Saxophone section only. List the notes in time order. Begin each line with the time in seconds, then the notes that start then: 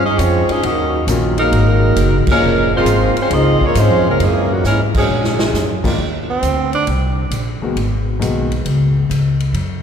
0.05 C#4 G#4 C5 D#5
0.19 G#3 C4 F4 C#5
0.51 C#4 G#4 C5 D#5
0.65 C#4 F#4 A#4 D#5
1.39 G#3 D#4 F#4 A#4
2.31 G#3 C#4 F4 A#4
2.77 A#3 F4 G#4 C5
3.22 G#3 C#4 F4 C5
3.34 C4 F4 G#4 D#5
3.65 A#3 F4 G#4 C#5
3.79 G#3 C#4 F4 C5
4.10 G#3 C#4 F4 A#4
4.24 E3 A#3 C#4 G#4
4.53 E3 A#3 C#4 F#4
4.66 G#3 C#4 E4 A#4
4.98 F#3 C#4 D4 G#4